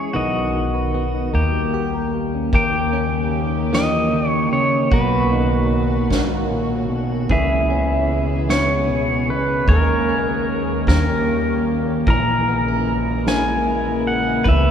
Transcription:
0.00 0.10 E2 medium
0.00 0.14 E3 medium
0.00 0.23 G#3 soft
0.00 0.23 C#4 soft
0.00 0.11 G#4 medium
0.00 0.14 G#4 medium
0.00 0.23 G#4 medium
0.00 0.11 C#5 medium
0.13 1.31 B1 medium
0.13 1.28 B2 medium
0.13 1.42 D#3 medium
0.13 1.34 F#4 medium
0.13 0.73 B4 medium
0.13 1.70 D#5 medium
0.33 1.33 F#3 medium
0.54 0.93 F#4 soft
0.74 1.29 B4 medium
0.94 1.33 B3 soft
0.94 1.29 F#4 medium
1.14 1.29 D#4 soft
1.33 2.51 D#2 medium
1.33 2.48 D#3 medium
1.33 2.52 A#3 medium
1.33 2.10 G4 medium
1.33 1.93 A#4 medium
1.53 2.48 G3 medium
1.74 2.61 G4 medium
1.74 2.13 G4 medium
1.94 2.49 A#4 medium
2.14 2.49 G4 soft
2.35 2.49 C#4 medium
2.53 4.88 D#2 medium
2.53 4.90 C#3 medium
2.53 3.73 D#3 medium
2.53 4.89 G3 medium
2.53 3.72 A#3 medium
2.53 7.25 C#4 medium
2.53 4.89 D#4 medium
2.53 4.90 G4 medium
2.53 5.00 G4 medium
2.53 4.88 A#4 medium
2.53 3.77 G5 loud
2.53 kick medium
2.53 ride medium
2.93 5.00 C#4 medium
2.93 ride medium
3.33 ride soft
3.73 4.12 E3 medium
3.73 4.91 A#3 medium
3.73 4.29 D#5 medium
3.73 snare medium
3.73 ride medium
4.12 4.52 D#3 medium
4.12 ride soft
4.29 4.49 C#5 medium
4.52 4.92 C#3 medium
4.52 4.93 C#5 medium
4.52 ride medium
4.92 7.26 B1 medium
4.92 6.10 B2 medium
4.92 7.28 D#3 medium
4.92 7.28 F#3 medium
4.92 6.10 A#3 medium
4.92 7.37 F#4 medium
4.92 7.25 F#4 medium
4.92 7.29 F#4 medium
4.92 6.08 B4 medium
4.92 kick medium
5.31 7.38 D#4 medium
5.31 ride medium
5.71 ride medium
6.11 6.49 G#2 medium
6.11 7.38 A#3 medium
6.11 kick medium
6.11 snare medium
6.11 ride medium
6.50 6.89 A#2 medium
6.50 ride soft
6.89 7.29 B2 medium
6.89 ride medium
7.29 9.64 C#2 medium
7.29 9.27 C#3 medium
7.29 9.66 C#3 medium
7.29 9.68 E3 medium
7.29 9.66 E3 medium
7.29 9.63 G#3 medium
7.29 10.85 G#3 medium
7.29 9.66 B3 medium
7.29 9.66 E4 medium
7.29 9.64 E4 medium
7.29 9.75 G#4 medium
7.29 9.65 B4 medium
7.29 8.50 E5 loud
7.29 kick medium
7.29 ride medium
7.70 10.09 C#4 medium
7.70 ride medium
8.09 ride medium
8.49 9.68 B3 medium
8.49 9.31 C#5 medium
8.49 snare medium
8.49 ride medium
8.88 9.28 B2 medium
8.88 ride soft
9.28 9.68 C#3 medium
9.28 9.70 B4 medium
9.28 ride medium
9.67 10.85 D#2 medium
9.67 10.83 D#3 medium
9.67 12.06 D#3 medium
9.67 10.83 G#3 medium
9.67 10.88 A#3 medium
9.67 14.43 A#3 medium
9.67 10.89 C#4 medium
9.67 12.06 C#4 medium
9.67 10.89 D#4 medium
9.67 10.87 G#4 medium
9.67 10.89 G#4 medium
9.67 10.84 A#4 medium
9.67 10.84 C#5 medium
9.67 kick medium
9.67 ride medium
10.07 12.48 C#4 medium
10.07 ride medium
10.47 ride soft
10.87 12.05 D#2 medium
10.87 12.03 D#3 medium
10.87 12.03 G3 medium
10.87 12.07 G3 medium
10.87 12.16 A#3 medium
10.87 13.27 C#4 medium
10.87 12.04 G4 medium
10.87 12.08 G4 medium
10.87 11.64 A#4 medium
10.87 12.04 A#4 medium
10.87 kick medium
10.87 snare medium
10.87 ride medium
11.27 ride soft
11.67 ride medium
12.07 14.41 A#1 medium
12.07 14.41 A#2 medium
12.07 14.71 C#3 medium
12.07 14.71 E3 medium
12.07 14.45 E3 medium
12.07 14.71 G#3 medium
12.07 14.71 E4 medium
12.07 13.28 G#4 medium
12.07 14.53 A#4 medium
12.07 13.24 A#5 medium
12.07 kick medium
12.07 ride medium
12.47 12.68 B3 medium
12.47 ride medium
12.68 14.54 C#4 soft
12.87 ride medium
13.26 14.54 A#3 medium
13.26 14.50 C#4 medium
13.26 13.66 E4 medium
13.26 14.46 G#4 medium
13.26 14.03 G#5 medium
13.26 snare medium
13.26 ride medium
13.66 14.41 E4 medium
13.66 ride soft
14.06 14.47 F#5 medium
14.06 ride medium
14.44 14.71 C#2 medium
14.44 14.71 C#3 medium
14.44 14.71 E3 medium
14.44 14.71 B3 medium
14.44 14.71 B4 loud
14.44 14.71 B4 medium
14.44 kick medium
14.44 ride medium
14.49 14.71 E5 medium

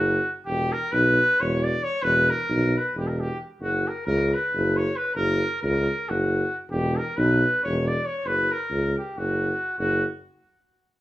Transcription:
0.00 0.18 F#1 loud
0.00 0.31 F#4 medium
0.45 0.72 E1 medium
0.45 0.74 G4 loud
0.72 0.93 A#4 loud
0.92 1.19 B1 loud
0.92 1.42 B4 loud
1.40 1.74 E1 loud
1.40 1.65 C#5 loud
1.63 1.85 D5 loud
1.83 2.04 C#5 loud
2.02 2.29 E1 loud
2.02 2.31 B4 loud
2.30 2.79 A#4 loud
2.49 2.75 B1 loud
2.77 2.97 B4 medium
2.96 3.30 E1 medium
2.96 3.09 G4 medium
3.07 3.21 A#4 medium
3.20 3.38 G4 loud
3.60 3.86 F#1 medium
3.60 3.89 F#4 medium
3.88 4.06 A#4 medium
4.06 4.32 C#2 loud
4.06 4.35 A#4 loud
4.34 4.78 B4 medium
4.54 4.88 F#1 loud
4.77 4.98 C#5 medium
4.96 5.15 B4 medium
5.15 5.41 F#1 loud
5.15 5.59 A#4 loud
5.62 5.88 C#2 loud
5.62 6.10 A#4 loud
6.09 6.43 F#1 loud
6.09 6.56 F#4 medium
6.71 6.96 E1 loud
6.71 6.99 G4 loud
6.97 7.18 A#4 loud
7.17 7.43 B1 loud
7.17 7.63 B4 loud
7.64 7.98 E1 loud
7.64 7.89 C#5 loud
7.87 8.07 D5 loud
8.05 8.28 C#5 medium
8.24 8.50 F#1 medium
8.24 8.53 B4 loud
8.52 8.97 A#4 loud
8.71 8.96 C#2 loud
8.98 9.19 G4 medium
9.17 9.51 F#1 medium
9.17 9.78 F#4 medium
9.78 10.03 F#1 loud
9.78 10.04 F#4 medium

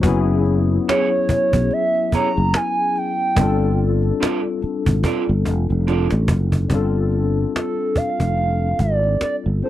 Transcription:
0.01 0.77 F#1 loud
0.01 3.32 F#3 medium
0.01 3.33 B3 medium
0.01 3.34 C#4 medium
0.01 cajon bass loud
0.07 3.35 E4 medium
0.07 3.35 G#4 medium
0.45 cajon slap soft
0.89 1.07 B3 medium
0.89 1.07 E4 medium
0.89 1.07 G#4 medium
0.89 1.75 C#5 medium
0.89 1.08 C#5 loud
0.89 cajon slap medium
1.29 muted fretless electric bass stroke soft
1.29 cajon bass medium
1.53 1.69 B1 medium
1.53 cajon bass medium
1.71 2.13 E5 loud
1.71 cajon slap soft
1.97 cajon slap soft
2.12 2.28 B3 medium
2.12 2.28 E4 medium
2.12 2.28 G#4 medium
2.12 2.29 C#5 medium
2.12 2.58 A#5 medium
2.12 muted fretless electric bass stroke soft
2.12 cajon bass medium
2.37 2.52 F#1 medium
2.37 cajon slap soft
2.54 2.99 G#5 medium
2.54 cajon slap medium
2.96 3.80 G5 loud
2.96 cajon slap soft
3.21 cajon slap soft
3.35 4.11 G1 loud
3.35 6.65 G3 medium
3.35 6.66 C4 medium
3.35 6.67 D4 medium
3.35 cajon bass loud
3.41 6.68 F4 medium
3.41 6.69 A4 medium
3.79 cajon slap soft
4.03 cajon slap soft
4.21 4.40 C4 medium
4.21 4.40 F4 medium
4.21 4.40 A4 medium
4.21 4.41 D5 medium
4.21 cajon slap loud
4.62 muted fretless electric bass stroke soft
4.62 cajon slap soft
4.86 5.02 G#1 medium
4.86 cajon bass medium
5.04 5.23 C4 medium
5.04 5.23 F4 medium
5.04 5.24 A4 medium
5.04 5.24 D5 medium
5.04 cajon bass loud
5.29 5.46 G1 medium
5.29 cajon slap soft
5.45 5.67 F1 medium
5.45 cajon bass medium
5.70 6.07 F1 medium
5.70 cajon slap soft
5.87 6.06 C4 medium
5.87 6.07 F4 medium
5.87 6.07 A4 medium
5.87 6.07 D5 medium
5.87 cajon slap soft
6.10 6.27 A1 medium
6.10 cajon slap medium
6.28 6.66 F#1 medium
6.28 cajon bass loud
6.52 cajon bass medium
6.68 7.44 G1 medium
6.68 9.57 G3 medium
6.68 9.58 C4 medium
6.68 9.59 D4 medium
6.68 cajon bass loud
6.74 9.60 F4 medium
6.74 9.60 A4 medium
7.12 cajon slap soft
7.55 7.98 A4 medium
7.55 cajon slap medium
7.96 8.82 F5 loud
7.96 muted fretless electric bass stroke soft
7.96 cajon bass medium
8.20 8.72 F1 medium
8.20 cajon bass medium
8.38 cajon slap soft
8.79 9.16 G#1 medium
8.79 9.21 D5 medium
8.79 cajon bass medium
9.04 cajon slap soft
9.21 9.36 D5 medium
9.21 muted fretless electric bass stroke soft
9.21 cajon slap medium
9.46 9.61 G1 medium
9.62 9.69 G3 soft
9.62 9.69 C4 soft
9.62 9.69 D4 soft
9.62 9.69 F4 soft
9.62 9.69 A4 soft
9.62 9.69 C5 medium
9.62 cajon slap soft

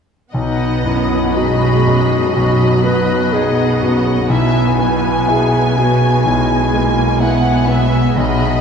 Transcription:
0.33 4.27 B1 soft
0.33 2.32 B1 soft
0.33 4.28 B2 soft
0.33 1.33 B3 soft
0.33 0.88 D#4 soft
0.33 1.33 D#5 soft
0.33 1.34 F#5 soft
0.85 1.67 F#2 soft
0.85 1.39 E4 soft
1.35 2.36 G#3 soft
1.35 2.17 D#4 soft
1.35 2.34 F#4 medium
1.35 4.27 D#5 soft
1.35 2.34 B5 soft
1.86 2.65 F#2 soft
2.35 4.28 B1 soft
2.35 3.34 F#3 soft
2.35 2.85 F#4 soft
2.35 3.32 B5 soft
2.84 3.64 B3 soft
2.84 3.35 B4 soft
3.32 4.29 B3 soft
3.32 4.12 D#4 soft
3.32 3.84 G#4 medium
3.32 4.32 F#5 soft
3.82 4.31 F#2 soft
3.82 4.31 F#4 soft
4.29 6.22 B1 soft
4.29 8.16 B1 soft
4.29 8.16 B2 soft
4.29 6.23 B3 soft
4.29 5.32 E4 soft
4.29 4.79 E5 soft
4.29 6.25 G#5 soft
4.79 5.58 B2 soft
4.79 7.18 G#5 soft
5.28 6.07 E4 soft
5.28 5.78 G#4 medium
5.77 6.55 B2 soft
5.77 6.29 F#4 soft
6.25 8.15 B1 soft
6.25 6.75 G#3 soft
6.25 7.71 E4 soft
6.25 8.15 G#5 soft
6.74 7.50 G#3 soft
6.74 7.23 A#3 soft
7.20 8.20 B3 soft
7.20 7.99 E4 soft
7.20 7.70 F#5 soft
7.68 8.18 B2 soft
7.68 8.19 E5 soft
8.17 8.61 B1 soft
8.17 8.61 B2 soft
8.17 8.61 G#3 soft
8.17 8.61 D#5 soft
8.17 8.61 B5 soft
8.21 8.61 B3 soft

